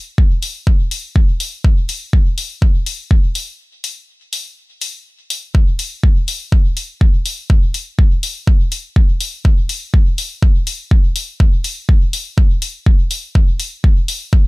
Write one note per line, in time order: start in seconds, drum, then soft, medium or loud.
0.18 kick loud
0.43 open hi-hat medium
0.67 kick loud
0.91 open hi-hat medium
1.16 kick loud
1.40 open hi-hat medium
1.64 kick loud
1.89 open hi-hat medium
2.13 kick loud
2.38 open hi-hat medium
2.62 kick loud
2.86 open hi-hat medium
3.11 kick loud
3.35 open hi-hat medium
3.84 open hi-hat medium
4.33 open hi-hat medium
4.81 open hi-hat medium
5.30 open hi-hat medium
5.55 kick loud
5.79 open hi-hat medium
6.03 kick loud
6.28 open hi-hat medium
6.52 kick loud
6.77 open hi-hat medium
7.01 kick loud
7.26 open hi-hat medium
7.50 kick loud
7.74 open hi-hat medium
7.99 kick loud
8.23 open hi-hat medium
8.47 kick loud
8.72 open hi-hat medium
8.96 kick loud
9.21 open hi-hat medium
9.45 kick loud
9.69 open hi-hat medium
9.94 kick loud
10.18 open hi-hat medium
10.43 kick loud
10.67 open hi-hat medium
10.91 kick loud
11.16 open hi-hat medium
11.40 kick loud
11.64 open hi-hat medium
11.89 kick loud
12.13 open hi-hat medium
12.38 kick loud
12.62 open hi-hat medium
12.86 kick loud
13.11 open hi-hat medium
13.35 kick loud
13.60 open hi-hat medium
13.84 kick loud
14.08 open hi-hat medium
14.33 kick loud